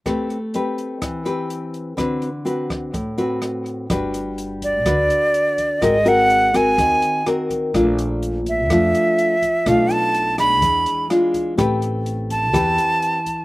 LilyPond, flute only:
\new Staff \with { instrumentName = "Flute" } { \time 4/4 \key g \major \tempo 4 = 125 r1 | r1 | r4. d''2~ d''8 | ees''8 ges''4 aes''4. r4 |
r4. e''2~ e''8 | f''8 a''4 b''4. r4 | r4. a''2~ a''8 | }